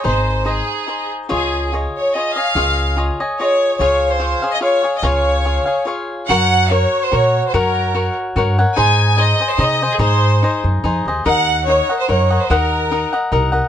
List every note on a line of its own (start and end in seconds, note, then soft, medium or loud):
0.04 0.59 G#1 medium
0.04 0.44 D#4 medium
0.04 0.45 G#4 medium
0.04 0.44 C5 medium
0.04 0.48 C5 medium
0.04 0.46 D#5 medium
0.45 0.87 D#4 soft
0.45 0.88 G#4 soft
0.45 1.12 G#4 medium
0.45 0.87 C5 soft
0.45 0.88 D#5 soft
0.87 1.29 D#4 soft
0.87 1.29 G#4 soft
0.87 1.29 C5 soft
0.87 1.30 D#5 soft
1.29 1.85 C#2 medium
1.29 1.72 F4 medium
1.29 1.73 G#4 medium
1.29 1.70 G#4 medium
1.29 1.73 C#5 medium
1.29 1.72 D#5 medium
1.72 2.15 F4 soft
1.72 2.15 G#4 soft
1.72 2.16 C#5 soft
1.72 2.15 D#5 soft
1.98 2.14 C#5 medium
2.15 2.37 F4 soft
2.15 2.37 G#4 soft
2.15 2.36 C#5 medium
2.15 2.36 D#5 medium
2.15 2.35 D#5 soft
2.35 2.55 G#4 soft
2.35 2.55 C#5 soft
2.35 2.56 D#5 soft
2.35 2.96 F5 medium
2.55 3.09 C#2 medium
2.55 2.96 F4 medium
2.55 2.97 G#4 medium
2.55 2.97 C#5 medium
2.55 2.97 D#5 medium
2.97 3.19 F4 soft
2.97 3.19 G#4 soft
2.97 3.19 C#5 medium
2.97 3.19 D#5 medium
3.20 3.39 G#4 soft
3.20 3.39 C#5 soft
3.20 3.39 D#5 soft
3.39 3.80 F4 soft
3.39 3.80 G#4 soft
3.39 3.77 C#5 medium
3.39 3.81 C#5 soft
3.39 3.81 D#5 medium
3.78 4.33 C#2 medium
3.78 4.18 F4 medium
3.78 4.18 G#4 medium
3.78 4.08 C#5 medium
3.78 4.21 C#5 medium
3.78 4.20 F5 medium
4.10 4.52 C5 medium
4.19 4.42 F4 soft
4.19 4.42 G#4 soft
4.19 4.42 C#5 medium
4.19 4.41 F5 soft
4.42 4.60 G#4 soft
4.42 4.61 C#5 soft
4.42 4.61 F5 soft
4.52 4.57 D#5 medium
4.61 4.83 F4 soft
4.61 4.83 G#4 soft
4.61 4.94 C#5 medium
4.61 4.83 C#5 soft
4.61 4.82 F5 soft
4.83 5.02 G#4 soft
4.83 5.03 C#5 soft
4.83 5.02 F5 soft
4.97 5.03 D#5 medium
5.03 5.57 C#2 medium
5.03 5.44 F4 medium
5.03 5.44 G#4 medium
5.03 5.87 C#5 medium
5.03 5.45 C#5 medium
5.03 5.45 F5 medium
5.45 5.67 F4 soft
5.45 5.66 G#4 soft
5.45 5.66 C#5 soft
5.45 5.64 F5 medium
5.66 5.86 G#4 soft
5.66 5.86 C#5 soft
5.66 5.86 F5 soft
5.85 6.29 F4 soft
5.85 6.30 G#4 soft
5.85 6.30 C#5 medium
5.85 6.30 F5 medium
6.28 6.84 F#2 medium
6.28 6.69 F#4 medium
6.28 6.70 A#4 medium
6.28 6.71 C#5 medium
6.28 6.68 F#5 medium
6.28 6.70 F#5 medium
6.70 7.10 F#4 medium
6.70 7.11 A#4 medium
6.70 7.03 C#5 medium
6.70 7.12 C#5 soft
6.70 7.12 F#5 soft
7.04 7.13 C5 medium
7.12 7.39 A#2 medium
7.12 7.53 F#4 soft
7.12 7.53 A#4 medium
7.12 7.54 C#5 soft
7.12 7.45 C#5 medium
7.12 7.53 F#5 soft
7.48 7.56 C5 medium
7.54 8.07 F#2 medium
7.54 7.93 F#4 medium
7.54 7.94 A#4 medium
7.54 8.14 A#4 medium
7.54 7.95 C#5 medium
7.54 7.95 F#5 medium
7.95 8.35 F#4 medium
7.95 8.36 A#4 soft
7.95 8.36 C#5 medium
7.95 8.37 F#5 medium
8.36 8.62 G2 medium
8.36 8.58 F#4 medium
8.36 8.58 A#4 medium
8.36 8.57 C#5 medium
8.36 8.57 F#5 medium
8.58 8.77 A#4 soft
8.58 8.77 C#5 soft
8.58 8.77 F#5 soft
8.75 9.31 G#2 medium
8.75 9.17 D#4 medium
8.75 9.17 G#4 medium
8.75 9.17 C5 medium
8.75 9.19 D#5 medium
8.75 9.14 G#5 medium
9.17 9.39 D#4 medium
9.17 9.40 G#4 soft
9.17 9.39 C5 medium
9.17 9.49 D#5 medium
9.17 9.39 D#5 medium
9.40 9.58 G#4 soft
9.40 9.58 C5 soft
9.40 9.59 D#5 soft
9.49 9.59 C5 medium
9.58 9.85 C3 medium
9.58 9.80 D#4 soft
9.58 9.81 G#4 medium
9.58 9.81 C5 medium
9.58 9.91 D#5 medium
9.58 9.81 D#5 medium
9.82 9.98 G#4 soft
9.82 9.99 C5 soft
9.82 9.99 D#5 soft
9.91 10.01 G#4 medium
9.99 10.41 G#2 medium
9.99 10.42 D#4 medium
9.99 10.41 G#4 medium
9.99 10.59 C5 medium
9.99 10.42 C5 medium
9.99 10.44 D#5 medium
10.42 10.83 D#4 soft
10.42 10.84 G#4 soft
10.42 10.84 C5 medium
10.42 10.85 D#5 medium
10.64 10.82 F#2 medium
10.84 11.04 F2 medium
10.84 11.06 D#4 medium
10.84 11.06 G#4 medium
10.84 11.06 C5 medium
10.84 11.07 D#5 medium
11.05 11.23 D#2 medium
11.05 11.26 G#4 soft
11.05 11.26 C5 soft
11.05 11.25 D#5 soft
11.25 11.80 D#2 medium
11.25 11.67 D#4 medium
11.25 11.66 A#4 medium
11.25 11.68 D#5 medium
11.25 11.68 F#5 medium
11.25 11.65 F#5 medium
11.67 11.89 D#4 soft
11.67 11.90 A#4 soft
11.67 11.97 C#5 medium
11.67 11.89 D#5 soft
11.67 11.88 F#5 medium
11.89 12.08 A#4 soft
11.89 12.08 D#5 soft
11.89 12.09 F#5 soft
11.99 12.08 C5 medium
12.08 12.36 F#2 medium
12.08 12.30 D#4 soft
12.08 12.31 A#4 medium
12.08 12.38 C#5 medium
12.08 12.29 D#5 medium
12.08 12.29 F#5 soft
12.30 12.49 A#4 soft
12.30 12.50 D#5 soft
12.30 12.50 F#5 soft
12.42 12.51 C5 medium
12.50 13.03 D#2 medium
12.50 12.91 D#4 medium
12.50 12.90 A#4 medium
12.50 13.13 A#4 medium
12.50 12.91 D#5 medium
12.50 12.91 F#5 medium
12.91 13.13 D#4 soft
12.91 13.13 A#4 medium
12.91 13.12 D#5 soft
12.91 13.11 F#5 medium
13.13 13.31 A#4 soft
13.13 13.31 D#5 soft
13.13 13.32 F#5 medium
13.32 13.58 C2 medium
13.32 13.54 D#4 medium
13.32 13.52 A#4 medium
13.32 13.51 D#5 medium
13.32 13.51 F#5 medium
13.52 13.68 A#4 soft
13.52 13.68 D#5 soft
13.52 13.68 F#5 soft